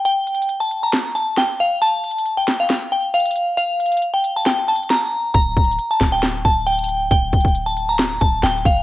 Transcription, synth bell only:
X:1
M:4/4
L:1/16
Q:1/4=136
K:Dm
V:1 name="Synth bell"
g4- g a2 b z2 a2 g2 f2 | a4- a g2 f z2 g2 f4 | f4- f g2 a g2 a2 b4 | b4- b a2 g z2 a2 g4 |
g4- g a2 b z2 a2 g2 f2 |]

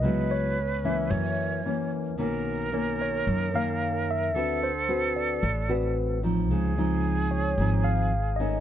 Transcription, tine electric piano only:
X:1
M:4/4
L:1/8
Q:1/4=111
K:Db
V:1 name="Tine electric piano"
e d2 _f3 z2 | z3 ^c2 f2 =e- | =e c2 =d3 z2 | z3 d2 f2 e |]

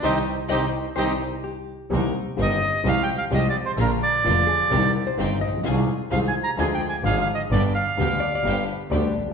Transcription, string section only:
X:1
M:4/4
L:1/8
Q:1/4=128
K:Cm
V:1 name="String section"
[CEG] z [CEG] z [CEG] z3 | [CEB] z [CEB] z [A,FG] z [A,FG] z | [B,DF] z [B,DF] z [CEG] z [CEG] z | [CFA] z [CFA] z [DFA] z [DFA] z |
[=B,DG] z [B,DG] z [B,DG] z [B,DG] z |]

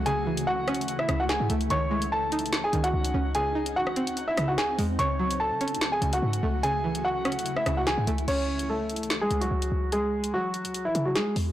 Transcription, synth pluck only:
X:1
M:4/4
L:1/8
Q:1/4=146
K:C#m
V:1 name="Synth pluck" clef=bass
C, E,2 C2 C,2 A, | D, G,2 D2 D,2 C | C,, D2 ^B,2 C,,2 G, | C, F,2 C2 C,2 A, |
C, E,2 C2 C,2 A, | z8 | z8 |]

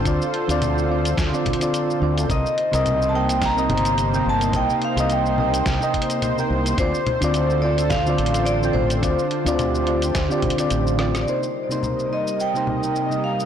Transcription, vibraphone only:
X:1
M:4/4
L:1/16
Q:"Swing 16ths" 1/4=107
K:Cdor
V:1 name="Vibraphone"
z16 | e4- e3/2 a/2 g2 b6 a2 | g2 f2 g6 z6 | c6 d2 f4 d2 c2- |
c12 z3 z/2 d/2 | c6 e2 g6 f2 |]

